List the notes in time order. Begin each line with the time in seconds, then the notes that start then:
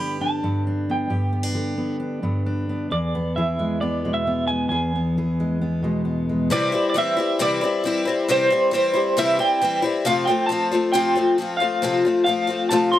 Already playing: G2 D3 D4 G4 B5
0.00 B3
0.21 D4 A5
0.43 G2 B3
0.67 D4
0.90 B3 G5
1.10 G2 G4
1.33 B3
1.43 D4
1.54 D3 G4
1.78 B3
2.00 D4
2.22 G2 B3
2.46 D4
2.69 B3
2.91 E2 G#4 D5
3.15 B3
3.36 E3 G#4 E5
3.59 G#3
3.81 B3 D5
4.04 B2 G#3
4.14 E5
4.27 B3
4.47 G#3 G#5
4.69 E2 G#4 G#5
4.96 B3
5.17 E3 G#4
5.40 G#3
5.61 B3
5.83 B2 G#3
6.05 B3
6.29 G#3
6.50 C3 E3 G3 C4 E4 D5
6.72 G3 C4 E4
6.90 D5
6.94 E3 G3 C4 E4
6.98 E5
7.17 G3 C4 E4
7.39 C3 E3 G3 C4 E4 D5
7.61 G3 C4 E4
7.84 E3 G3 C4 E4
8.05 G3 C4 E4
8.28 C3 E3 G3 C4 E4 C5
8.50 G3 C4 E4
8.71 E3 G3 C4 E4 C5
8.94 G3 C4 E4
9.17 C3 E3 G3 C4 E4 E5
9.39 G3 C4 E4 G5
9.61 E3 G3 C4 E4
9.82 G3 C4 E4
10.05 F2 C3 F3 A3 C4 F4 F5
10.25 C4 F4 G5
10.30 F3 A3
10.46 F3 A3 A5
10.52 C4 F4
10.72 F3 A3 C4 F4
10.92 F2 C3 F3 A3 C4 F4 G5
11.15 F3 A3 C4 F4
11.38 F3 A3 C4 F4
11.57 F4 F5
11.61 F3 A3 C4
11.82 F2 C3 F3 A3 C4 F4
12.05 F3 A3 C4 F4
12.24 F3 A3 C4 F5
12.29 F4
12.47 F3 A3 C4 F4
12.69 F2 C3 F3 A3 C4 F4 A5
12.92 F3 A3 C4 F4 C6